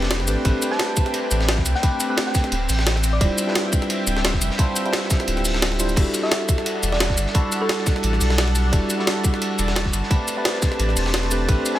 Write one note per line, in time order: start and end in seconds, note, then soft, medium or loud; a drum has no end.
0.00 0.21 E1 loud
0.00 0.27 A3 medium
0.00 0.28 C4 medium
0.00 5.93 C4 medium
0.00 0.28 D4 medium
0.00 0.28 G4 medium
0.00 0.28 B4 loud
0.00 2.49 B4 medium
0.00 2.48 D5 medium
0.00 2.48 G5 medium
0.00 snare medium
0.00 snare soft
0.10 snare loud
0.10 closed hi-hat medium
0.10 ride medium
0.20 0.29 G1 medium
0.20 snare soft
0.27 0.36 A1 loud
0.27 0.33 A3 loud
0.27 0.33 C4 medium
0.27 0.33 D4 medium
0.27 0.33 G4 medium
0.27 0.33 B4 loud
0.27 closed hi-hat medium
0.27 ride medium
0.27 shaker medium
0.45 0.53 A1 loud
0.45 0.69 A3 loud
0.45 0.69 C4 medium
0.45 0.69 D4 medium
0.45 0.69 G4 medium
0.45 0.70 B4 loud
0.45 kick loud
0.45 closed hi-hat medium
0.45 ride medium
0.62 closed hi-hat medium
0.62 ride medium
0.62 shaker medium
0.70 1.81 A3 loud
0.70 1.81 C4 medium
0.70 1.81 D4 medium
0.70 1.81 G4 medium
0.70 1.82 A4 loud
0.70 0.92 A5 medium
0.70 snare soft
0.79 snare loud
0.79 closed hi-hat medium
0.79 ride medium
0.97 kick loud
0.97 closed hi-hat medium
0.97 ride medium
0.97 shaker medium
1.06 snare soft
1.06 closed hi-hat soft
1.14 closed hi-hat medium
1.14 ride medium
1.31 1.64 A1 medium
1.31 closed hi-hat medium
1.31 ride medium
1.31 shaker medium
1.40 snare medium
1.40 snare soft
1.48 snare loud
1.48 closed hi-hat medium
1.48 ride medium
1.58 kick medium
1.58 snare medium
1.65 1.74 C2 medium
1.65 closed hi-hat medium
1.65 ride medium
1.65 shaker medium
1.75 1.96 G5 loud
1.75 snare soft
1.83 2.07 A3 loud
1.83 2.07 C4 medium
1.83 2.07 D4 medium
1.83 2.07 G4 medium
1.83 2.08 B4 loud
1.83 kick loud
1.83 closed hi-hat medium
1.83 ride medium
2.00 closed hi-hat medium
2.00 ride medium
2.00 shaker medium
2.09 2.14 A3 medium
2.09 2.14 C4 medium
2.09 2.14 D4 medium
2.09 2.14 G4 medium
2.09 2.14 B4 loud
2.17 snare loud
2.17 closed hi-hat medium
2.17 ride medium
2.27 2.47 G5 medium
2.27 snare medium
2.34 kick loud
2.34 snare medium
2.34 closed hi-hat medium
2.34 ride medium
2.34 shaker medium
2.44 snare soft
2.44 closed hi-hat soft
2.52 2.68 D1 medium
2.52 5.93 E5 medium
2.52 5.93 G5 medium
2.52 closed hi-hat loud
2.52 ride medium
2.69 3.20 A1 loud
2.69 closed hi-hat medium
2.69 open hi-hat medium
2.69 shaker medium
2.79 snare medium
2.79 snare soft
2.86 snare loud
2.86 closed hi-hat medium
2.86 ride medium
2.95 snare soft
3.04 closed hi-hat medium
3.04 ride medium
3.04 shaker medium
3.13 3.18 D5 medium
3.20 3.29 D1 loud
3.20 3.45 G3 loud
3.20 3.45 D4 medium
3.20 3.45 E4 medium
3.20 3.45 F4 medium
3.20 3.46 C5 loud
3.20 3.27 D5 medium
3.20 kick loud
3.20 closed hi-hat medium
3.20 ride medium
3.38 closed hi-hat medium
3.38 ride medium
3.38 shaker medium
3.46 4.56 G3 loud
3.46 4.57 D4 medium
3.46 4.57 E4 medium
3.46 4.57 F4 medium
3.46 4.58 B4 loud
3.46 snare soft
3.55 snare loud
3.55 closed hi-hat medium
3.55 ride medium
3.72 kick loud
3.72 closed hi-hat medium
3.72 ride medium
3.72 shaker medium
3.82 snare soft
3.82 closed hi-hat soft
3.90 closed hi-hat loud
3.90 ride medium
4.07 4.40 D1 medium
4.07 closed hi-hat medium
4.07 ride medium
4.07 shaker medium
4.16 snare medium
4.16 snare soft
4.24 snare loud
4.24 closed hi-hat loud
4.24 ride medium
4.34 kick medium
4.34 snare medium
4.41 4.50 F1 medium
4.41 closed hi-hat medium
4.41 ride medium
4.41 shaker medium
4.50 snare soft
4.58 4.83 G3 loud
4.58 4.83 D4 medium
4.58 4.83 E4 medium
4.58 4.83 F4 medium
4.58 4.84 C5 loud
4.58 kick loud
4.58 closed hi-hat loud
4.58 ride medium
4.76 closed hi-hat medium
4.76 ride medium
4.76 shaker medium
4.85 4.90 G3 medium
4.85 4.90 D4 medium
4.85 4.90 E4 medium
4.85 4.90 F4 medium
4.85 4.90 C5 loud
4.85 closed hi-hat soft
4.93 snare loud
4.93 closed hi-hat loud
4.93 ride medium
5.02 snare medium
5.10 kick loud
5.10 snare medium
5.10 closed hi-hat medium
5.10 ride medium
5.10 shaker medium
5.20 snare soft
5.20 closed hi-hat soft
5.27 5.96 D1 loud
5.27 closed hi-hat loud
5.27 ride loud
5.37 snare soft
5.37 closed hi-hat soft
5.45 closed hi-hat medium
5.45 open hi-hat medium
5.45 shaker medium
5.54 snare medium
5.54 snare soft
5.62 snare loud
5.62 closed hi-hat loud
5.62 ride medium
5.72 snare soft
5.79 5.85 G3 loud
5.79 5.85 D4 medium
5.79 5.85 E4 medium
5.79 5.85 F4 medium
5.79 5.85 C5 loud
5.79 closed hi-hat medium
5.79 ride medium
5.79 shaker medium
5.89 closed hi-hat soft
5.89 shaker soft
5.96 6.05 E1 loud
5.96 6.21 G3 loud
5.96 6.21 D4 medium
5.96 6.21 E4 medium
5.96 6.21 F#4 medium
5.96 10.06 A4 medium
5.96 6.21 A4 loud
5.96 11.79 D5 medium
5.96 10.06 F#5 medium
5.96 11.79 A5 medium
5.96 kick loud
5.96 closed hi-hat loud
5.96 crash loud
5.96 ride medium
6.14 closed hi-hat medium
6.14 ride medium
6.14 shaker medium
6.22 7.32 G3 loud
6.22 7.33 D4 medium
6.22 7.33 E4 medium
6.22 7.33 F#4 medium
6.22 7.33 A4 loud
6.22 6.44 E5 medium
6.22 snare soft
6.31 snare loud
6.31 closed hi-hat medium
6.31 ride medium
6.48 kick loud
6.48 closed hi-hat medium
6.48 ride medium
6.48 shaker medium
6.58 snare medium
6.66 closed hi-hat loud
6.66 ride loud
6.83 7.16 E1 medium
6.83 closed hi-hat medium
6.83 ride medium
6.83 shaker medium
6.92 7.13 D5 medium
6.92 snare medium
6.92 snare soft
7.00 snare loud
7.00 closed hi-hat loud
7.00 ride medium
7.10 kick medium
7.10 snare medium
7.18 7.26 G1 medium
7.18 closed hi-hat medium
7.18 ride medium
7.18 shaker medium
7.26 snare soft
7.34 7.59 G3 medium
7.34 7.59 D4 medium
7.34 7.59 E4 medium
7.34 7.59 F#4 medium
7.34 7.59 A4 loud
7.34 kick loud
7.34 closed hi-hat medium
7.34 ride medium
7.52 closed hi-hat medium
7.52 ride medium
7.52 shaker medium
7.61 7.66 G3 medium
7.61 7.66 D4 medium
7.61 7.66 E4 medium
7.61 7.66 F#4 medium
7.61 7.66 A4 medium
7.61 7.66 A4 loud
7.69 7.75 A4 medium
7.69 snare loud
7.69 closed hi-hat medium
7.69 ride medium
7.78 snare soft
7.86 kick loud
7.86 snare medium
7.86 closed hi-hat medium
7.86 ride medium
7.86 shaker medium
7.96 snare medium
8.03 8.19 A1 medium
8.03 closed hi-hat loud
8.03 ride medium
8.13 snare soft
8.20 8.71 B1 loud
8.20 closed hi-hat medium
8.20 open hi-hat medium
8.20 shaker medium
8.30 snare soft
8.30 snare medium
8.38 snare loud
8.38 closed hi-hat loud
8.38 ride medium
8.47 snare soft
8.55 closed hi-hat medium
8.55 ride medium
8.55 shaker medium
8.72 8.81 E1 loud
8.72 8.97 G3 loud
8.72 8.97 D4 medium
8.72 8.97 E4 medium
8.72 8.97 F#4 medium
8.72 8.97 A4 loud
8.72 kick loud
8.72 closed hi-hat loud
8.72 ride medium
8.90 closed hi-hat medium
8.90 ride medium
8.90 shaker medium
8.98 10.08 G3 medium
8.98 10.09 D4 medium
8.98 10.09 E4 medium
8.98 10.09 F#4 medium
8.98 10.09 A4 loud
8.98 snare soft
9.07 snare loud
9.07 closed hi-hat medium
9.07 ride medium
9.23 kick loud
9.23 closed hi-hat medium
9.23 ride medium
9.23 shaker medium
9.34 snare medium
9.42 closed hi-hat loud
9.42 ride medium
9.59 9.92 E1 medium
9.59 closed hi-hat medium
9.59 ride medium
9.59 shaker medium
9.68 snare medium
9.68 snare soft
9.75 snare loud
9.75 closed hi-hat medium
9.75 ride medium
9.85 kick medium
9.85 snare medium
9.93 10.02 G1 medium
9.93 closed hi-hat medium
9.93 ride medium
9.93 shaker medium
10.03 snare soft
10.10 10.35 A3 medium
10.10 10.35 C4 medium
10.10 10.35 D4 medium
10.10 10.35 G4 medium
10.10 11.79 B4 medium
10.10 10.35 B4 loud
10.10 11.79 C5 medium
10.10 kick loud
10.10 closed hi-hat medium
10.10 ride medium
10.28 closed hi-hat medium
10.28 ride medium
10.28 shaker medium
10.37 10.42 A3 medium
10.37 10.42 C4 medium
10.37 10.42 D4 medium
10.37 10.42 G4 medium
10.37 10.42 B4 loud
10.45 snare loud
10.45 closed hi-hat medium
10.45 ride medium
10.54 snare soft
10.62 kick loud
10.62 snare medium
10.62 closed hi-hat medium
10.62 ride medium
10.62 shaker medium
10.72 snare soft
10.79 10.95 A1 medium
10.79 closed hi-hat medium
10.79 ride medium
10.89 snare soft
10.97 11.47 E1 loud
10.97 closed hi-hat medium
10.97 open hi-hat medium
10.97 shaker medium
11.06 snare soft
11.14 snare loud
11.14 closed hi-hat medium
11.14 ride medium
11.23 snare soft
11.31 11.36 A3 medium
11.31 11.37 C4 medium
11.31 11.37 D4 medium
11.31 11.37 G4 medium
11.31 11.37 B4 loud
11.31 closed hi-hat medium
11.31 ride medium
11.31 shaker medium
11.48 11.57 A1 loud
11.48 11.73 A3 loud
11.48 11.73 C4 medium
11.48 11.73 D4 medium
11.48 11.73 G4 medium
11.48 11.73 B4 loud
11.48 kick loud
11.48 closed hi-hat medium
11.48 ride medium
11.66 closed hi-hat medium
11.66 ride medium
11.66 shaker medium
11.74 11.79 A3 medium
11.74 11.79 C4 medium
11.74 11.79 D4 medium
11.74 11.79 G4 medium
11.74 11.79 A5 medium
11.74 snare soft